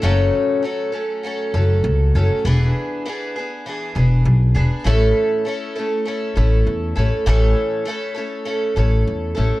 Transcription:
<<
  \new Staff \with { instrumentName = "Twelve-string acoustic guitar" } { \time 4/4 \key a \major \tempo 4 = 100 <fis, cis fis a cis' a'>4 <fis a cis' a'>8 <fis a cis' a'>8 <fis a cis' a'>8 <fis a cis' a'>4 <fis a cis' a'>8 | <e b d' gis'>4 <e b d' gis'>8 <b d' gis'>8 <e b d' gis'>8 <b d' gis'>4 <b d' gis'>8 | <a, e a cis' e' a'>4 <a cis' e' a'>8 <a cis' e' a'>8 <a cis' e' a'>8 <a cis' e' a'>4 <a cis' e' a'>8 | <a, e a cis' e' a'>4 <a cis' e' a'>8 <a cis' e' a'>8 <a cis' e' a'>8 <a cis' e' a'>4 <a cis' e' a'>8 | }
  \new Staff \with { instrumentName = "Upright bass" } { \clef bass \time 4/4 \key a \major fis,,8 r2 fis,,8 cis,8 fis,,16 r16 | e,,8 r2 e,,8 b,,8 e,,16 r16 | a,,8 r2 a,,8 e,8 a,,16 r16 | a,,8 r2 a,,8 e,8 a,,16 r16 | }
>>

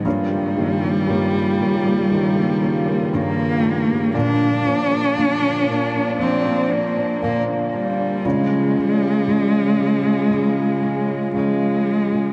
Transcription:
<<
  \new Staff \with { instrumentName = "Nylon-string guitar" } { \time 4/4 \key bes \dorian \tempo 4 = 58 <g, ees bes des' g' bes'>8 <bes des' g' bes'>16 <bes des' g' bes'>16 <g, ees bes des' g' bes'>8 <bes des' g' bes'>16 <bes des' g' bes'>16 <bes des' g' bes'>16 <bes des' g' bes'>16 <bes des' g' bes'>16 <bes des' g' bes'>16 <g, ees bes des' g' bes'>8. <bes des' g' bes'>16 | <bes, d f bes d' bes'>8 <f bes d' bes'>16 <f bes d' bes'>16 <bes, d f bes d' bes'>8 <f bes d' bes'>16 <f bes d' bes'>16 <f bes d' bes'>16 <f bes d' bes'>16 <f bes d' bes'>16 <f bes d' bes'>16 <bes, d f bes d' bes'>4 | <des f des' f' aes'>8 <f des' f' aes'>16 <des' f' aes'>16 <des f des' f' aes'>8 <f des' f' aes'>16 <des' f' aes'>16 <f des' f' aes'>16 <des' f' aes'>16 <f des' f' aes'>16 <des' f' aes'>16 <des f des' f' aes'>8. <des' f' aes'>16 | }
  \new Staff \with { instrumentName = "Cello" } { \time 4/4 \key bes \dorian g2. bes4 | d'2 c'8 bes8 bes8 g8 | aes2. aes4 | }
  \new Staff \with { instrumentName = "French horn section" } { \clef bass \time 4/4 \key bes \dorian <g, des f'>1 | <bes, f d'>1 | <des aes f'>1 | }
  \new Staff \with { instrumentName = "Grand piano" } { \clef bass \time 4/4 \key bes \dorian g,8 ees8 g4 ees4 g,4 | bes,8 f8 bes,4 f4 bes,4 | des8 des8 des4 des4 des4 | }
>>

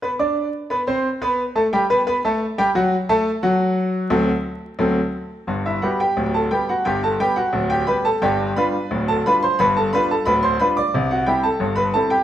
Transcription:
<<
  \new Staff \with { instrumentName = "Grand piano" } { \time 2/4 \key g \major \tempo 4 = 88 <b b' b''>16 <d' d'' d'''>8. <b b' b''>16 <c' c'' c'''>8 <b b' b''>16~ | <b b' b''>16 <a a' a''>16 <g g' g''>16 <b b' b''>16 <b b' b''>16 <a a' a''>8 <g g' g''>16 | <fis fis' fis''>8 <a a' a''>8 <fis fis' fis''>4~ | <fis fis' fis''>4. r8 |
r16 <e' e''>16 <fis' fis''>16 <g' g''>8 <a' a''>16 <g' g''>16 <fis' fis''>16 | <g' g''>16 <a' a''>16 <g' g''>16 <fis' fis''>8 <g' g''>16 <b' b''>16 <a' a''>16 | <g' d'' g''>8 <b' b''>8. <a' a''>16 <b' b''>16 <c'' c'''>16 | <b' b''>16 <a' a''>16 <b' b''>16 <a' a''>16 <b' b''>16 <c'' c'''>16 <b' b''>16 <d'' d'''>16 |
r16 <fis' fis''>16 <g' g''>16 <a' a''>8 <b' b''>16 <a' a''>16 <g' g''>16 | }
  \new Staff \with { instrumentName = "Grand piano" } { \clef bass \time 2/4 \key g \major r2 | r2 | r2 | <d, fis c' a'>8 r8 <d, fis c' a'>8 r8 |
<g,, g,>8 <g b g'>8 <d,, d,>8 <g b>8 | <g,, g,>8 <g b>8 <d,, d,>8 <g b g'>8 | <g,, g,>8 <g d' f'>8 <d,, d,>8 <g d' f'>8 | <g,, g,>8 <g d' f'>8 <d,, d,>8 <g d' f'>8 |
<c, c>8 <g c' e'>8 <g,, g,>8 <g c' e'>8 | }
>>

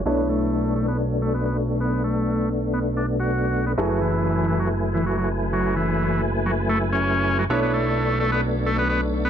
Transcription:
<<
  \new Staff \with { instrumentName = "Grand piano" } { \time 4/4 \key b \dorian \tempo 4 = 129 <d' e' a' cis''>1~ | <d' e' a' cis''>1 | <e' gis' a' b'>1~ | <e' gis' a' b'>1 |
<d' e' a' cis''>1 | }
  \new Staff \with { instrumentName = "Tonewheel organ" } { \time 4/4 \key b \dorian <a b d'>1~ | <a b d'>1 | <fis a e' b' gis''>1~ | <fis a e' b' gis''>1 |
<a b d'>1 | }
  \new Staff \with { instrumentName = "Transistor combo organ" } { \time 4/4 \key b \dorian b16 b16 a4 a16 b16 r8 a16 b16 b16 r8 b16~ | b16 a4 r8 b16 r16 d'16 r16 fis'4 b16 | fis16 fis16 e4 e16 fis16 r8 e16 fis16 fis16 r8 fis16~ | fis16 e4 r8 fis16 r16 a16 r16 cis'4 fis16 |
b16 b16 a4 a16 b16 r8 a16 b16 b16 r8 b16 | }
  \new Staff \with { instrumentName = "Analog synth bass" } { \clef bass \time 4/4 \key b \dorian b,,1~ | b,,1 | fis,,1~ | fis,,1 |
b,,1 | }
>>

